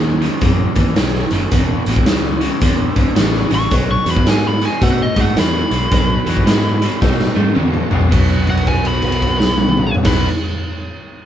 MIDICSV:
0, 0, Header, 1, 6, 480
1, 0, Start_track
1, 0, Tempo, 550964
1, 1317, Time_signature, 4, 2, 24, 8
1, 9804, End_track
2, 0, Start_track
2, 0, Title_t, "Lead electric guitar"
2, 0, Program_c, 0, 29
2, 3089, Note_on_c, 0, 85, 103
2, 3238, Note_off_c, 0, 85, 0
2, 3408, Note_on_c, 0, 85, 86
2, 3558, Note_off_c, 0, 85, 0
2, 3576, Note_on_c, 0, 83, 90
2, 3722, Note_off_c, 0, 83, 0
2, 3740, Note_on_c, 0, 80, 98
2, 3884, Note_off_c, 0, 80, 0
2, 3893, Note_on_c, 0, 83, 82
2, 4041, Note_off_c, 0, 83, 0
2, 4054, Note_on_c, 0, 80, 81
2, 4207, Note_off_c, 0, 80, 0
2, 4207, Note_on_c, 0, 78, 100
2, 4358, Note_off_c, 0, 78, 0
2, 4378, Note_on_c, 0, 75, 94
2, 4523, Note_off_c, 0, 75, 0
2, 4538, Note_on_c, 0, 78, 73
2, 4683, Note_off_c, 0, 78, 0
2, 4697, Note_on_c, 0, 83, 100
2, 6094, Note_off_c, 0, 83, 0
2, 7404, Note_on_c, 0, 78, 84
2, 7557, Note_off_c, 0, 78, 0
2, 7565, Note_on_c, 0, 80, 80
2, 7718, Note_off_c, 0, 80, 0
2, 7726, Note_on_c, 0, 83, 83
2, 7875, Note_off_c, 0, 83, 0
2, 7885, Note_on_c, 0, 83, 78
2, 8668, Note_off_c, 0, 83, 0
2, 8769, Note_on_c, 0, 83, 81
2, 8944, Note_off_c, 0, 83, 0
2, 9804, End_track
3, 0, Start_track
3, 0, Title_t, "Tonewheel organ"
3, 0, Program_c, 1, 16
3, 0, Note_on_c, 1, 58, 59
3, 0, Note_on_c, 1, 61, 57
3, 0, Note_on_c, 1, 64, 63
3, 0, Note_on_c, 1, 68, 69
3, 265, Note_off_c, 1, 58, 0
3, 268, Note_off_c, 1, 61, 0
3, 270, Note_off_c, 1, 64, 0
3, 274, Note_off_c, 1, 68, 0
3, 812, Note_on_c, 1, 58, 84
3, 818, Note_on_c, 1, 64, 82
3, 823, Note_on_c, 1, 61, 77
3, 831, Note_on_c, 1, 68, 85
3, 1262, Note_off_c, 1, 58, 0
3, 1265, Note_off_c, 1, 64, 0
3, 1268, Note_off_c, 1, 61, 0
3, 1272, Note_off_c, 1, 68, 0
3, 1300, Note_on_c, 1, 59, 71
3, 1313, Note_on_c, 1, 62, 69
3, 1323, Note_on_c, 1, 68, 86
3, 1325, Note_on_c, 1, 66, 69
3, 2185, Note_off_c, 1, 59, 0
3, 2191, Note_off_c, 1, 62, 0
3, 2196, Note_off_c, 1, 68, 0
3, 2197, Note_off_c, 1, 66, 0
3, 2740, Note_on_c, 1, 59, 82
3, 2746, Note_on_c, 1, 62, 73
3, 2752, Note_on_c, 1, 66, 69
3, 2763, Note_on_c, 1, 68, 101
3, 3187, Note_off_c, 1, 59, 0
3, 3190, Note_off_c, 1, 62, 0
3, 3193, Note_off_c, 1, 66, 0
3, 3198, Note_off_c, 1, 68, 0
3, 3225, Note_on_c, 1, 63, 57
3, 3229, Note_on_c, 1, 61, 75
3, 3238, Note_on_c, 1, 66, 66
3, 3242, Note_on_c, 1, 69, 69
3, 4108, Note_off_c, 1, 63, 0
3, 4110, Note_off_c, 1, 61, 0
3, 4114, Note_off_c, 1, 66, 0
3, 4116, Note_off_c, 1, 69, 0
3, 4657, Note_on_c, 1, 61, 70
3, 4661, Note_on_c, 1, 63, 67
3, 4676, Note_on_c, 1, 69, 82
3, 4678, Note_on_c, 1, 66, 65
3, 5106, Note_off_c, 1, 61, 0
3, 5108, Note_off_c, 1, 63, 0
3, 5115, Note_off_c, 1, 69, 0
3, 5116, Note_off_c, 1, 66, 0
3, 5144, Note_on_c, 1, 61, 62
3, 5151, Note_on_c, 1, 63, 66
3, 5154, Note_on_c, 1, 66, 67
3, 5171, Note_on_c, 1, 69, 77
3, 6027, Note_off_c, 1, 61, 0
3, 6031, Note_off_c, 1, 63, 0
3, 6032, Note_off_c, 1, 66, 0
3, 6041, Note_off_c, 1, 69, 0
3, 6582, Note_on_c, 1, 61, 85
3, 6589, Note_on_c, 1, 63, 74
3, 6593, Note_on_c, 1, 66, 73
3, 6601, Note_on_c, 1, 69, 91
3, 7028, Note_off_c, 1, 61, 0
3, 7032, Note_off_c, 1, 63, 0
3, 7034, Note_off_c, 1, 66, 0
3, 7038, Note_off_c, 1, 69, 0
3, 7068, Note_on_c, 1, 69, 84
3, 7070, Note_on_c, 1, 63, 71
3, 7072, Note_on_c, 1, 66, 68
3, 7077, Note_on_c, 1, 61, 68
3, 8648, Note_off_c, 1, 69, 0
3, 8649, Note_off_c, 1, 63, 0
3, 8650, Note_off_c, 1, 66, 0
3, 8653, Note_off_c, 1, 61, 0
3, 8748, Note_on_c, 1, 66, 67
3, 8752, Note_on_c, 1, 63, 67
3, 8754, Note_on_c, 1, 61, 72
3, 8754, Note_on_c, 1, 69, 82
3, 8926, Note_off_c, 1, 66, 0
3, 8928, Note_off_c, 1, 63, 0
3, 8929, Note_off_c, 1, 61, 0
3, 8929, Note_off_c, 1, 69, 0
3, 9804, End_track
4, 0, Start_track
4, 0, Title_t, "Overdriven electric guitar"
4, 0, Program_c, 2, 29
4, 0, Note_on_c, 2, 42, 83
4, 0, Note_on_c, 2, 51, 79
4, 149, Note_off_c, 2, 42, 0
4, 150, Note_off_c, 2, 51, 0
4, 180, Note_on_c, 2, 42, 72
4, 188, Note_on_c, 2, 51, 78
4, 340, Note_off_c, 2, 42, 0
4, 344, Note_off_c, 2, 51, 0
4, 361, Note_on_c, 2, 42, 72
4, 364, Note_on_c, 2, 52, 82
4, 631, Note_off_c, 2, 42, 0
4, 633, Note_off_c, 2, 52, 0
4, 659, Note_on_c, 2, 42, 66
4, 661, Note_on_c, 2, 52, 80
4, 819, Note_off_c, 2, 42, 0
4, 820, Note_off_c, 2, 52, 0
4, 841, Note_on_c, 2, 42, 85
4, 846, Note_on_c, 2, 51, 82
4, 1111, Note_off_c, 2, 42, 0
4, 1114, Note_off_c, 2, 51, 0
4, 1150, Note_on_c, 2, 42, 67
4, 1151, Note_on_c, 2, 51, 69
4, 1304, Note_off_c, 2, 42, 0
4, 1305, Note_off_c, 2, 51, 0
4, 1324, Note_on_c, 2, 47, 77
4, 1328, Note_on_c, 2, 40, 76
4, 1593, Note_off_c, 2, 47, 0
4, 1595, Note_off_c, 2, 40, 0
4, 1628, Note_on_c, 2, 40, 70
4, 1633, Note_on_c, 2, 47, 82
4, 1783, Note_off_c, 2, 40, 0
4, 1786, Note_off_c, 2, 47, 0
4, 1803, Note_on_c, 2, 40, 78
4, 1807, Note_on_c, 2, 49, 86
4, 2072, Note_off_c, 2, 40, 0
4, 2075, Note_off_c, 2, 49, 0
4, 2097, Note_on_c, 2, 40, 78
4, 2100, Note_on_c, 2, 49, 78
4, 2258, Note_off_c, 2, 40, 0
4, 2259, Note_off_c, 2, 49, 0
4, 2286, Note_on_c, 2, 40, 80
4, 2291, Note_on_c, 2, 50, 82
4, 2554, Note_off_c, 2, 40, 0
4, 2556, Note_off_c, 2, 50, 0
4, 2575, Note_on_c, 2, 40, 66
4, 2583, Note_on_c, 2, 50, 75
4, 2737, Note_off_c, 2, 40, 0
4, 2741, Note_off_c, 2, 50, 0
4, 2748, Note_on_c, 2, 40, 82
4, 2752, Note_on_c, 2, 49, 92
4, 3025, Note_off_c, 2, 40, 0
4, 3027, Note_off_c, 2, 49, 0
4, 3052, Note_on_c, 2, 40, 67
4, 3055, Note_on_c, 2, 49, 84
4, 3215, Note_off_c, 2, 40, 0
4, 3217, Note_off_c, 2, 49, 0
4, 3229, Note_on_c, 2, 47, 63
4, 3233, Note_on_c, 2, 54, 76
4, 3506, Note_off_c, 2, 47, 0
4, 3508, Note_off_c, 2, 54, 0
4, 3539, Note_on_c, 2, 47, 70
4, 3543, Note_on_c, 2, 54, 71
4, 3699, Note_off_c, 2, 47, 0
4, 3701, Note_off_c, 2, 54, 0
4, 3712, Note_on_c, 2, 47, 79
4, 3718, Note_on_c, 2, 56, 91
4, 3987, Note_off_c, 2, 47, 0
4, 3990, Note_off_c, 2, 56, 0
4, 4020, Note_on_c, 2, 47, 82
4, 4028, Note_on_c, 2, 56, 79
4, 4180, Note_off_c, 2, 47, 0
4, 4184, Note_off_c, 2, 56, 0
4, 4193, Note_on_c, 2, 47, 69
4, 4196, Note_on_c, 2, 57, 78
4, 4468, Note_off_c, 2, 47, 0
4, 4469, Note_off_c, 2, 57, 0
4, 4497, Note_on_c, 2, 47, 65
4, 4498, Note_on_c, 2, 57, 81
4, 4658, Note_off_c, 2, 47, 0
4, 4659, Note_off_c, 2, 57, 0
4, 4677, Note_on_c, 2, 47, 89
4, 4679, Note_on_c, 2, 56, 99
4, 4950, Note_off_c, 2, 47, 0
4, 4951, Note_off_c, 2, 56, 0
4, 4979, Note_on_c, 2, 56, 79
4, 4980, Note_on_c, 2, 47, 74
4, 5140, Note_off_c, 2, 47, 0
4, 5140, Note_off_c, 2, 56, 0
4, 5160, Note_on_c, 2, 47, 76
4, 5166, Note_on_c, 2, 54, 71
4, 5432, Note_off_c, 2, 47, 0
4, 5435, Note_off_c, 2, 54, 0
4, 5456, Note_on_c, 2, 47, 65
4, 5463, Note_on_c, 2, 54, 89
4, 5618, Note_off_c, 2, 47, 0
4, 5622, Note_off_c, 2, 54, 0
4, 5633, Note_on_c, 2, 47, 82
4, 5637, Note_on_c, 2, 56, 93
4, 5908, Note_off_c, 2, 47, 0
4, 5910, Note_off_c, 2, 56, 0
4, 5939, Note_on_c, 2, 47, 71
4, 5941, Note_on_c, 2, 56, 75
4, 6100, Note_off_c, 2, 47, 0
4, 6101, Note_off_c, 2, 56, 0
4, 6110, Note_on_c, 2, 47, 76
4, 6115, Note_on_c, 2, 57, 71
4, 6387, Note_off_c, 2, 47, 0
4, 6390, Note_off_c, 2, 57, 0
4, 6404, Note_on_c, 2, 47, 64
4, 6407, Note_on_c, 2, 57, 82
4, 6566, Note_off_c, 2, 47, 0
4, 6574, Note_off_c, 2, 57, 0
4, 6576, Note_on_c, 2, 47, 82
4, 6581, Note_on_c, 2, 56, 88
4, 6860, Note_off_c, 2, 47, 0
4, 6863, Note_off_c, 2, 56, 0
4, 6887, Note_on_c, 2, 47, 71
4, 6893, Note_on_c, 2, 56, 73
4, 7036, Note_off_c, 2, 47, 0
4, 7047, Note_on_c, 2, 47, 87
4, 7057, Note_off_c, 2, 56, 0
4, 7067, Note_on_c, 2, 54, 82
4, 7078, Note_on_c, 2, 59, 94
4, 8736, Note_off_c, 2, 47, 0
4, 8739, Note_on_c, 2, 47, 76
4, 8755, Note_off_c, 2, 54, 0
4, 8759, Note_on_c, 2, 54, 83
4, 8774, Note_off_c, 2, 59, 0
4, 8777, Note_on_c, 2, 59, 92
4, 8935, Note_off_c, 2, 47, 0
4, 8945, Note_off_c, 2, 54, 0
4, 8954, Note_off_c, 2, 59, 0
4, 9804, End_track
5, 0, Start_track
5, 0, Title_t, "Picked electric bass"
5, 0, Program_c, 3, 34
5, 0, Note_on_c, 3, 39, 85
5, 226, Note_off_c, 3, 39, 0
5, 365, Note_on_c, 3, 42, 84
5, 580, Note_off_c, 3, 42, 0
5, 666, Note_on_c, 3, 39, 97
5, 791, Note_off_c, 3, 39, 0
5, 848, Note_on_c, 3, 35, 87
5, 1062, Note_off_c, 3, 35, 0
5, 1145, Note_on_c, 3, 30, 87
5, 1270, Note_off_c, 3, 30, 0
5, 1324, Note_on_c, 3, 28, 78
5, 1539, Note_off_c, 3, 28, 0
5, 1623, Note_on_c, 3, 33, 80
5, 1749, Note_off_c, 3, 33, 0
5, 1805, Note_on_c, 3, 37, 85
5, 2147, Note_off_c, 3, 37, 0
5, 2280, Note_on_c, 3, 40, 100
5, 2497, Note_off_c, 3, 40, 0
5, 2582, Note_on_c, 3, 37, 93
5, 2709, Note_off_c, 3, 37, 0
5, 2763, Note_on_c, 3, 33, 78
5, 2979, Note_off_c, 3, 33, 0
5, 3057, Note_on_c, 3, 33, 79
5, 3186, Note_off_c, 3, 33, 0
5, 3240, Note_on_c, 3, 35, 85
5, 3457, Note_off_c, 3, 35, 0
5, 3531, Note_on_c, 3, 40, 81
5, 3662, Note_off_c, 3, 40, 0
5, 3709, Note_on_c, 3, 44, 81
5, 4057, Note_off_c, 3, 44, 0
5, 4196, Note_on_c, 3, 47, 92
5, 4415, Note_off_c, 3, 47, 0
5, 4503, Note_on_c, 3, 44, 93
5, 4630, Note_off_c, 3, 44, 0
5, 4674, Note_on_c, 3, 40, 85
5, 4894, Note_off_c, 3, 40, 0
5, 4975, Note_on_c, 3, 35, 73
5, 5104, Note_off_c, 3, 35, 0
5, 5155, Note_on_c, 3, 35, 92
5, 5374, Note_off_c, 3, 35, 0
5, 5456, Note_on_c, 3, 40, 84
5, 5585, Note_off_c, 3, 40, 0
5, 5633, Note_on_c, 3, 44, 87
5, 5980, Note_off_c, 3, 44, 0
5, 6115, Note_on_c, 3, 47, 85
5, 6334, Note_off_c, 3, 47, 0
5, 6417, Note_on_c, 3, 44, 91
5, 6546, Note_off_c, 3, 44, 0
5, 6590, Note_on_c, 3, 40, 78
5, 6811, Note_off_c, 3, 40, 0
5, 6891, Note_on_c, 3, 35, 79
5, 7022, Note_off_c, 3, 35, 0
5, 7073, Note_on_c, 3, 35, 86
5, 8651, Note_off_c, 3, 35, 0
5, 8758, Note_on_c, 3, 35, 89
5, 8931, Note_off_c, 3, 35, 0
5, 9804, End_track
6, 0, Start_track
6, 0, Title_t, "Drums"
6, 189, Note_on_c, 9, 42, 60
6, 276, Note_off_c, 9, 42, 0
6, 358, Note_on_c, 9, 42, 82
6, 363, Note_on_c, 9, 36, 111
6, 445, Note_off_c, 9, 42, 0
6, 450, Note_off_c, 9, 36, 0
6, 657, Note_on_c, 9, 42, 68
6, 665, Note_on_c, 9, 36, 92
6, 744, Note_off_c, 9, 42, 0
6, 752, Note_off_c, 9, 36, 0
6, 837, Note_on_c, 9, 42, 80
6, 841, Note_on_c, 9, 38, 101
6, 924, Note_off_c, 9, 42, 0
6, 928, Note_off_c, 9, 38, 0
6, 994, Note_on_c, 9, 38, 32
6, 1081, Note_off_c, 9, 38, 0
6, 1137, Note_on_c, 9, 42, 71
6, 1224, Note_off_c, 9, 42, 0
6, 1319, Note_on_c, 9, 42, 96
6, 1323, Note_on_c, 9, 36, 104
6, 1406, Note_off_c, 9, 42, 0
6, 1411, Note_off_c, 9, 36, 0
6, 1623, Note_on_c, 9, 42, 68
6, 1710, Note_off_c, 9, 42, 0
6, 1711, Note_on_c, 9, 36, 85
6, 1795, Note_on_c, 9, 42, 84
6, 1798, Note_off_c, 9, 36, 0
6, 1798, Note_on_c, 9, 38, 103
6, 1882, Note_off_c, 9, 42, 0
6, 1885, Note_off_c, 9, 38, 0
6, 2099, Note_on_c, 9, 42, 63
6, 2187, Note_off_c, 9, 42, 0
6, 2276, Note_on_c, 9, 42, 99
6, 2280, Note_on_c, 9, 36, 104
6, 2363, Note_off_c, 9, 42, 0
6, 2367, Note_off_c, 9, 36, 0
6, 2578, Note_on_c, 9, 42, 71
6, 2582, Note_on_c, 9, 36, 93
6, 2665, Note_off_c, 9, 42, 0
6, 2669, Note_off_c, 9, 36, 0
6, 2754, Note_on_c, 9, 42, 87
6, 2757, Note_on_c, 9, 38, 111
6, 2841, Note_off_c, 9, 42, 0
6, 2844, Note_off_c, 9, 38, 0
6, 2914, Note_on_c, 9, 38, 28
6, 3001, Note_off_c, 9, 38, 0
6, 3055, Note_on_c, 9, 42, 66
6, 3142, Note_off_c, 9, 42, 0
6, 3232, Note_on_c, 9, 42, 90
6, 3237, Note_on_c, 9, 36, 115
6, 3319, Note_off_c, 9, 42, 0
6, 3324, Note_off_c, 9, 36, 0
6, 3538, Note_on_c, 9, 42, 64
6, 3625, Note_off_c, 9, 42, 0
6, 3628, Note_on_c, 9, 36, 84
6, 3715, Note_off_c, 9, 36, 0
6, 3716, Note_on_c, 9, 42, 83
6, 3720, Note_on_c, 9, 38, 99
6, 3803, Note_off_c, 9, 42, 0
6, 3807, Note_off_c, 9, 38, 0
6, 4020, Note_on_c, 9, 42, 56
6, 4107, Note_off_c, 9, 42, 0
6, 4194, Note_on_c, 9, 42, 88
6, 4197, Note_on_c, 9, 36, 103
6, 4281, Note_off_c, 9, 42, 0
6, 4284, Note_off_c, 9, 36, 0
6, 4497, Note_on_c, 9, 42, 67
6, 4499, Note_on_c, 9, 36, 80
6, 4584, Note_off_c, 9, 42, 0
6, 4586, Note_off_c, 9, 36, 0
6, 4675, Note_on_c, 9, 42, 75
6, 4678, Note_on_c, 9, 38, 98
6, 4762, Note_off_c, 9, 42, 0
6, 4765, Note_off_c, 9, 38, 0
6, 4975, Note_on_c, 9, 42, 58
6, 5063, Note_off_c, 9, 42, 0
6, 5153, Note_on_c, 9, 42, 88
6, 5155, Note_on_c, 9, 36, 120
6, 5240, Note_off_c, 9, 42, 0
6, 5242, Note_off_c, 9, 36, 0
6, 5458, Note_on_c, 9, 42, 59
6, 5545, Note_off_c, 9, 42, 0
6, 5548, Note_on_c, 9, 36, 70
6, 5635, Note_off_c, 9, 36, 0
6, 5635, Note_on_c, 9, 42, 82
6, 5638, Note_on_c, 9, 38, 100
6, 5722, Note_off_c, 9, 42, 0
6, 5725, Note_off_c, 9, 38, 0
6, 5940, Note_on_c, 9, 42, 66
6, 6027, Note_off_c, 9, 42, 0
6, 6116, Note_on_c, 9, 36, 108
6, 6117, Note_on_c, 9, 38, 65
6, 6203, Note_off_c, 9, 36, 0
6, 6204, Note_off_c, 9, 38, 0
6, 6264, Note_on_c, 9, 38, 55
6, 6351, Note_off_c, 9, 38, 0
6, 6416, Note_on_c, 9, 48, 72
6, 6503, Note_off_c, 9, 48, 0
6, 6506, Note_on_c, 9, 48, 53
6, 6590, Note_on_c, 9, 47, 76
6, 6593, Note_off_c, 9, 48, 0
6, 6677, Note_off_c, 9, 47, 0
6, 6739, Note_on_c, 9, 45, 63
6, 6826, Note_off_c, 9, 45, 0
6, 6891, Note_on_c, 9, 43, 88
6, 6978, Note_off_c, 9, 43, 0
6, 6981, Note_on_c, 9, 43, 72
6, 7068, Note_off_c, 9, 43, 0
6, 7074, Note_on_c, 9, 49, 87
6, 7075, Note_on_c, 9, 36, 97
6, 7161, Note_off_c, 9, 49, 0
6, 7162, Note_off_c, 9, 36, 0
6, 7380, Note_on_c, 9, 36, 62
6, 7381, Note_on_c, 9, 49, 43
6, 7467, Note_off_c, 9, 36, 0
6, 7468, Note_off_c, 9, 49, 0
6, 7469, Note_on_c, 9, 57, 40
6, 7552, Note_on_c, 9, 49, 43
6, 7554, Note_on_c, 9, 36, 60
6, 7556, Note_off_c, 9, 57, 0
6, 7639, Note_off_c, 9, 49, 0
6, 7641, Note_off_c, 9, 36, 0
6, 7709, Note_on_c, 9, 57, 48
6, 7796, Note_off_c, 9, 57, 0
6, 7859, Note_on_c, 9, 36, 54
6, 7861, Note_on_c, 9, 49, 47
6, 7945, Note_on_c, 9, 57, 53
6, 7946, Note_off_c, 9, 36, 0
6, 7948, Note_off_c, 9, 49, 0
6, 8032, Note_off_c, 9, 57, 0
6, 8035, Note_on_c, 9, 36, 62
6, 8035, Note_on_c, 9, 49, 52
6, 8122, Note_off_c, 9, 49, 0
6, 8123, Note_off_c, 9, 36, 0
6, 8191, Note_on_c, 9, 38, 85
6, 8278, Note_off_c, 9, 38, 0
6, 8342, Note_on_c, 9, 48, 99
6, 8429, Note_off_c, 9, 48, 0
6, 8437, Note_on_c, 9, 47, 93
6, 8513, Note_on_c, 9, 45, 89
6, 8525, Note_off_c, 9, 47, 0
6, 8600, Note_off_c, 9, 45, 0
6, 8664, Note_on_c, 9, 43, 86
6, 8751, Note_off_c, 9, 43, 0
6, 8751, Note_on_c, 9, 49, 90
6, 8755, Note_on_c, 9, 38, 95
6, 8758, Note_on_c, 9, 36, 106
6, 8838, Note_off_c, 9, 49, 0
6, 8842, Note_off_c, 9, 38, 0
6, 8845, Note_off_c, 9, 36, 0
6, 9804, End_track
0, 0, End_of_file